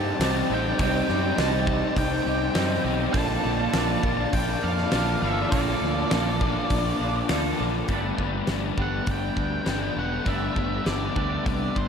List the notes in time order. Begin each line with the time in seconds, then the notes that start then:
Already playing: G2 C3 G3 C4 D#4 G4 C5 D5 G5 A5 D6
0.19 C2 C3 G3 C4 D#4 G4 D5, snare, open hi-hat
0.50 A1 G3 C4 D#4 G4 D5
0.54 G5
0.79 C2 C3 G3 C4 D#4 G4 D5 G5, kick, open hi-hat
1.09 F#2 C4 D#4 G4 D5, snare
1.37 C2 C3 G3 C4 D#4 A5, snare, open hi-hat
1.41 D#4 G4 D5
1.66 G3 C4 D#4, kick
1.96 C2 G5, kick, open hi-hat
2.26 C2 C4 D#4 G4 D5
2.54 F#2 C3 G3 C4 D#4 G4 D5, snare, open hi-hat
2.84 B1 G3 C4 D#4 G4 D5
3.12 A#1 A#2 D3 F3 A#3 D4 F4 A4 D5 F5 A5 D6, kick, open hi-hat
3.44 A#1 F4 A4 D5
3.73 A#1 D3 F3 A#3 D4 F4 A4 D5, snare, open hi-hat
4.02 A#1 F3 A#3 D4, kick
4.33 A#1 G5, kick, open hi-hat
4.64 F2 F4 A4 D5 F5
4.78 snare
4.91 A#1 D3 F3 A#3 D4 F4 A4, snare, open hi-hat
4.95 D5
5.20 G1 F3 A#3 D4 D5 E5
5.25 F4 A4
5.50 A#1 A#2 D3 F3 A#3 D4 D5, kick, open hi-hat
5.55 F4 A4 D5
5.82 D2 A4 D5
5.86 F4
6.09 A#1 D3 F3 A#3 D4 F4 A4, snare, open hi-hat
6.14 D5
6.39 F3 A#3 D4, kick
6.70 A#1, kick, open hi-hat
7.00 A#1 F4 A4 D5
7.28 D2 D3 F3 A#3 D4 F4 A4 D5, snare, open hi-hat
7.58 A#1 F3 A#3 D4 F4 A4 D5
7.88 G1 G2 D3 G3 A3 B3 D4 G4 B4, kick, open hi-hat
8.18 G1 G3 B3 D4, kick
8.47 G1 D3 G3 B3 D4, snare, open hi-hat
8.77 G1 G3 A3 B3 D4 G4 B4, kick
8.82 F#5
9.07 G1, kick, open hi-hat
9.11 G5
9.36 D2, kick
9.65 G1 D3 G3 B3 D4, snare, open hi-hat
9.95 E1 G3 B3 D4 F#5
10.24 G1 G2 D3 G3 A3 B3 D4 G4 B4 E5, kick, open hi-hat
10.55 G1 G3 B3 D4, kick
10.84 G1 D3 G3 B3 D4 D5, snare, open hi-hat
11.15 D2 G3 A3 B3 D4 G4 B4, kick
11.46 C2 D5, kick, open hi-hat
11.76 G1 C5, kick